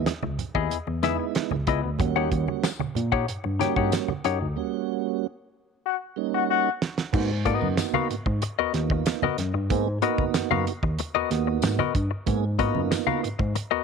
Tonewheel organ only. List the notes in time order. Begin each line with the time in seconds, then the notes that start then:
Already playing: G#3 B3 D#4 E4
1.02 G#3 B3 D#4 E4
1.99 F#3 A#3 C#4 F#4
2.05 G3
3.60 G3 A#3 C#4 F#4
4.56 G3 A#3 C#4 F#4
6.16 G3 A#3 C#4 D#4
7.13 A#3 B3 D#4 F#4
7.45 A#3 B3 D#4 F#4
8.73 A#3 B3 D#4 F4
9.70 A#3 B3 D#4 G#4
10.02 A#3 B3 D#4 F#4
11.30 A#3 B3 D#4 F#4
12.26 A#3 B3 D#4 G#4
12.59 A#3 B3 D#4 F4